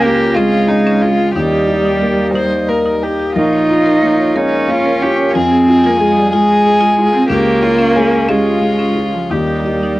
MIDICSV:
0, 0, Header, 1, 6, 480
1, 0, Start_track
1, 0, Tempo, 664452
1, 980, Time_signature, 6, 3, 24, 8
1, 3868, Tempo, 650759
1, 5788, Tempo, 681044
1, 7226, End_track
2, 0, Start_track
2, 0, Title_t, "Violin"
2, 0, Program_c, 0, 40
2, 16, Note_on_c, 0, 67, 98
2, 251, Note_on_c, 0, 65, 95
2, 262, Note_off_c, 0, 67, 0
2, 492, Note_on_c, 0, 63, 77
2, 503, Note_off_c, 0, 65, 0
2, 734, Note_on_c, 0, 65, 88
2, 745, Note_off_c, 0, 63, 0
2, 969, Note_off_c, 0, 65, 0
2, 973, Note_on_c, 0, 67, 76
2, 1636, Note_off_c, 0, 67, 0
2, 1694, Note_on_c, 0, 72, 81
2, 1943, Note_on_c, 0, 70, 68
2, 1954, Note_off_c, 0, 72, 0
2, 2190, Note_on_c, 0, 67, 71
2, 2201, Note_off_c, 0, 70, 0
2, 2427, Note_off_c, 0, 67, 0
2, 2431, Note_on_c, 0, 65, 78
2, 3152, Note_on_c, 0, 63, 70
2, 3163, Note_off_c, 0, 65, 0
2, 3395, Note_on_c, 0, 65, 80
2, 3406, Note_off_c, 0, 63, 0
2, 3630, Note_on_c, 0, 67, 96
2, 3641, Note_off_c, 0, 65, 0
2, 3869, Note_off_c, 0, 67, 0
2, 3872, Note_on_c, 0, 68, 91
2, 4578, Note_off_c, 0, 68, 0
2, 4586, Note_on_c, 0, 68, 116
2, 5287, Note_off_c, 0, 68, 0
2, 5299, Note_on_c, 0, 67, 95
2, 5543, Note_on_c, 0, 65, 86
2, 5554, Note_off_c, 0, 67, 0
2, 5791, Note_on_c, 0, 61, 77
2, 5802, Note_off_c, 0, 65, 0
2, 6023, Note_on_c, 0, 65, 86
2, 6034, Note_off_c, 0, 61, 0
2, 6740, Note_on_c, 0, 67, 64
2, 6751, Note_off_c, 0, 65, 0
2, 7226, Note_off_c, 0, 67, 0
2, 7226, End_track
3, 0, Start_track
3, 0, Title_t, "Harmonium"
3, 0, Program_c, 1, 20
3, 0, Note_on_c, 1, 49, 73
3, 0, Note_on_c, 1, 65, 57
3, 0, Note_on_c, 1, 77, 77
3, 955, Note_off_c, 1, 65, 0
3, 983, Note_off_c, 1, 49, 0
3, 984, Note_off_c, 1, 77, 0
3, 993, Note_on_c, 1, 63, 66
3, 993, Note_on_c, 1, 75, 63
3, 995, Note_on_c, 1, 58, 57
3, 2439, Note_off_c, 1, 63, 0
3, 2439, Note_off_c, 1, 75, 0
3, 2442, Note_on_c, 1, 65, 64
3, 2445, Note_on_c, 1, 73, 65
3, 3876, Note_off_c, 1, 73, 0
3, 3876, Note_on_c, 1, 75, 72
3, 3877, Note_off_c, 1, 58, 0
3, 3879, Note_on_c, 1, 56, 68
3, 5304, Note_on_c, 1, 73, 67
3, 5307, Note_off_c, 1, 75, 0
3, 6737, Note_on_c, 1, 75, 55
3, 6738, Note_off_c, 1, 73, 0
3, 6740, Note_on_c, 1, 63, 54
3, 6741, Note_on_c, 1, 58, 53
3, 6742, Note_off_c, 1, 56, 0
3, 6743, Note_off_c, 1, 65, 0
3, 7226, Note_off_c, 1, 58, 0
3, 7226, Note_off_c, 1, 63, 0
3, 7226, Note_off_c, 1, 75, 0
3, 7226, End_track
4, 0, Start_track
4, 0, Title_t, "Marimba"
4, 0, Program_c, 2, 12
4, 30, Note_on_c, 2, 65, 75
4, 100, Note_off_c, 2, 65, 0
4, 149, Note_on_c, 2, 65, 76
4, 219, Note_off_c, 2, 65, 0
4, 265, Note_on_c, 2, 61, 112
4, 337, Note_off_c, 2, 61, 0
4, 623, Note_on_c, 2, 61, 107
4, 694, Note_off_c, 2, 61, 0
4, 860, Note_on_c, 2, 65, 58
4, 931, Note_off_c, 2, 65, 0
4, 980, Note_on_c, 2, 63, 80
4, 1052, Note_off_c, 2, 63, 0
4, 1098, Note_on_c, 2, 67, 52
4, 1170, Note_off_c, 2, 67, 0
4, 1220, Note_on_c, 2, 75, 55
4, 1291, Note_off_c, 2, 75, 0
4, 1337, Note_on_c, 2, 63, 88
4, 1410, Note_off_c, 2, 63, 0
4, 1457, Note_on_c, 2, 67, 55
4, 1530, Note_off_c, 2, 67, 0
4, 1578, Note_on_c, 2, 67, 60
4, 1651, Note_off_c, 2, 67, 0
4, 1702, Note_on_c, 2, 63, 88
4, 1774, Note_off_c, 2, 63, 0
4, 2064, Note_on_c, 2, 63, 83
4, 2138, Note_off_c, 2, 63, 0
4, 2310, Note_on_c, 2, 67, 55
4, 2383, Note_off_c, 2, 67, 0
4, 2429, Note_on_c, 2, 70, 79
4, 2503, Note_off_c, 2, 70, 0
4, 2550, Note_on_c, 2, 73, 60
4, 2624, Note_off_c, 2, 73, 0
4, 2669, Note_on_c, 2, 82, 56
4, 2742, Note_off_c, 2, 82, 0
4, 2789, Note_on_c, 2, 70, 88
4, 2863, Note_off_c, 2, 70, 0
4, 2914, Note_on_c, 2, 73, 56
4, 2986, Note_off_c, 2, 73, 0
4, 3034, Note_on_c, 2, 73, 68
4, 3106, Note_off_c, 2, 73, 0
4, 3148, Note_on_c, 2, 70, 97
4, 3221, Note_off_c, 2, 70, 0
4, 3507, Note_on_c, 2, 70, 95
4, 3580, Note_off_c, 2, 70, 0
4, 3747, Note_on_c, 2, 73, 79
4, 3819, Note_off_c, 2, 73, 0
4, 3865, Note_on_c, 2, 65, 91
4, 3939, Note_off_c, 2, 65, 0
4, 3984, Note_on_c, 2, 68, 70
4, 4059, Note_off_c, 2, 68, 0
4, 4106, Note_on_c, 2, 75, 66
4, 4180, Note_off_c, 2, 75, 0
4, 4226, Note_on_c, 2, 65, 108
4, 4300, Note_off_c, 2, 65, 0
4, 4348, Note_on_c, 2, 68, 79
4, 4421, Note_off_c, 2, 68, 0
4, 4465, Note_on_c, 2, 68, 77
4, 4539, Note_off_c, 2, 68, 0
4, 4588, Note_on_c, 2, 65, 110
4, 4660, Note_off_c, 2, 65, 0
4, 4938, Note_on_c, 2, 65, 127
4, 5011, Note_off_c, 2, 65, 0
4, 5179, Note_on_c, 2, 68, 84
4, 5253, Note_off_c, 2, 68, 0
4, 5300, Note_on_c, 2, 61, 96
4, 5374, Note_off_c, 2, 61, 0
4, 5423, Note_on_c, 2, 65, 74
4, 5496, Note_off_c, 2, 65, 0
4, 5542, Note_on_c, 2, 73, 72
4, 5616, Note_off_c, 2, 73, 0
4, 5662, Note_on_c, 2, 61, 110
4, 5737, Note_off_c, 2, 61, 0
4, 5786, Note_on_c, 2, 65, 66
4, 5857, Note_off_c, 2, 65, 0
4, 5902, Note_on_c, 2, 65, 74
4, 5973, Note_off_c, 2, 65, 0
4, 6021, Note_on_c, 2, 61, 109
4, 6091, Note_off_c, 2, 61, 0
4, 6376, Note_on_c, 2, 61, 88
4, 6448, Note_off_c, 2, 61, 0
4, 6615, Note_on_c, 2, 65, 59
4, 6689, Note_off_c, 2, 65, 0
4, 6736, Note_on_c, 2, 63, 67
4, 6810, Note_off_c, 2, 63, 0
4, 6861, Note_on_c, 2, 67, 57
4, 6934, Note_off_c, 2, 67, 0
4, 6986, Note_on_c, 2, 75, 47
4, 7059, Note_off_c, 2, 75, 0
4, 7109, Note_on_c, 2, 63, 72
4, 7181, Note_off_c, 2, 63, 0
4, 7226, End_track
5, 0, Start_track
5, 0, Title_t, "Felt piano"
5, 0, Program_c, 3, 0
5, 0, Control_c, 3, 64, 127
5, 0, Note_on_c, 3, 37, 92
5, 0, Note_on_c, 3, 65, 61
5, 26, Note_on_c, 3, 61, 66
5, 170, Note_off_c, 3, 65, 0
5, 259, Note_on_c, 3, 60, 59
5, 407, Note_off_c, 3, 61, 0
5, 493, Note_on_c, 3, 61, 54
5, 501, Note_off_c, 3, 60, 0
5, 738, Note_on_c, 3, 65, 56
5, 879, Note_off_c, 3, 61, 0
5, 950, Note_off_c, 3, 37, 0
5, 976, Note_on_c, 3, 39, 74
5, 978, Note_off_c, 3, 65, 0
5, 993, Control_c, 3, 64, 0
5, 1099, Control_c, 3, 64, 127
5, 1218, Note_on_c, 3, 67, 54
5, 1460, Note_on_c, 3, 58, 59
5, 1604, Note_off_c, 3, 67, 0
5, 1691, Note_on_c, 3, 55, 47
5, 1847, Note_off_c, 3, 58, 0
5, 1939, Note_off_c, 3, 55, 0
5, 1943, Note_on_c, 3, 58, 51
5, 2187, Note_on_c, 3, 67, 47
5, 2335, Note_off_c, 3, 58, 0
5, 2401, Note_off_c, 3, 39, 0
5, 2427, Note_on_c, 3, 34, 70
5, 2432, Note_off_c, 3, 67, 0
5, 2447, Control_c, 3, 64, 0
5, 2553, Control_c, 3, 64, 127
5, 2674, Note_on_c, 3, 65, 53
5, 2906, Note_on_c, 3, 58, 57
5, 3057, Note_off_c, 3, 65, 0
5, 3137, Note_on_c, 3, 56, 47
5, 3292, Note_off_c, 3, 58, 0
5, 3380, Note_on_c, 3, 58, 59
5, 3384, Note_off_c, 3, 56, 0
5, 3625, Note_on_c, 3, 65, 62
5, 3768, Note_off_c, 3, 58, 0
5, 3838, Note_off_c, 3, 34, 0
5, 3866, Note_on_c, 3, 41, 80
5, 3867, Note_off_c, 3, 65, 0
5, 3883, Control_c, 3, 64, 0
5, 4008, Control_c, 3, 64, 127
5, 4107, Note_on_c, 3, 65, 65
5, 4348, Note_on_c, 3, 56, 67
5, 4494, Note_off_c, 3, 65, 0
5, 4578, Note_off_c, 3, 56, 0
5, 4589, Note_on_c, 3, 56, 63
5, 4820, Note_off_c, 3, 56, 0
5, 4831, Note_on_c, 3, 56, 58
5, 5066, Note_on_c, 3, 65, 74
5, 5209, Note_off_c, 3, 56, 0
5, 5273, Note_off_c, 3, 41, 0
5, 5300, Note_on_c, 3, 37, 83
5, 5305, Note_off_c, 3, 65, 0
5, 5319, Control_c, 3, 64, 0
5, 5456, Control_c, 3, 64, 127
5, 5542, Note_on_c, 3, 65, 66
5, 5792, Note_on_c, 3, 56, 72
5, 5926, Note_off_c, 3, 65, 0
5, 6022, Note_on_c, 3, 67, 59
5, 6164, Note_off_c, 3, 56, 0
5, 6251, Note_on_c, 3, 56, 49
5, 6257, Note_off_c, 3, 67, 0
5, 6492, Note_on_c, 3, 65, 53
5, 6637, Note_off_c, 3, 56, 0
5, 6708, Note_off_c, 3, 37, 0
5, 6736, Note_off_c, 3, 65, 0
5, 6737, Note_on_c, 3, 39, 69
5, 6752, Control_c, 3, 64, 0
5, 6892, Control_c, 3, 64, 127
5, 6979, Note_on_c, 3, 67, 48
5, 7226, Note_off_c, 3, 39, 0
5, 7226, Note_off_c, 3, 67, 0
5, 7226, End_track
6, 0, Start_track
6, 0, Title_t, "Cello"
6, 0, Program_c, 4, 42
6, 0, Note_on_c, 4, 58, 127
6, 254, Note_on_c, 4, 56, 111
6, 265, Note_off_c, 4, 58, 0
6, 968, Note_off_c, 4, 56, 0
6, 972, Note_on_c, 4, 55, 118
6, 2160, Note_off_c, 4, 55, 0
6, 2433, Note_on_c, 4, 63, 115
6, 3154, Note_on_c, 4, 61, 102
6, 3165, Note_off_c, 4, 63, 0
6, 3870, Note_on_c, 4, 60, 127
6, 3882, Note_off_c, 4, 61, 0
6, 4238, Note_on_c, 4, 58, 105
6, 4249, Note_off_c, 4, 60, 0
6, 4345, Note_on_c, 4, 56, 109
6, 4356, Note_off_c, 4, 58, 0
6, 4473, Note_on_c, 4, 55, 108
6, 4484, Note_off_c, 4, 56, 0
6, 4575, Note_off_c, 4, 55, 0
6, 4579, Note_on_c, 4, 56, 121
6, 5182, Note_on_c, 4, 60, 101
6, 5193, Note_off_c, 4, 56, 0
6, 5286, Note_off_c, 4, 60, 0
6, 5291, Note_on_c, 4, 58, 127
6, 6026, Note_on_c, 4, 56, 105
6, 6037, Note_off_c, 4, 58, 0
6, 6614, Note_on_c, 4, 53, 76
6, 6625, Note_off_c, 4, 56, 0
6, 6719, Note_on_c, 4, 55, 97
6, 6730, Note_off_c, 4, 53, 0
6, 7226, Note_off_c, 4, 55, 0
6, 7226, End_track
0, 0, End_of_file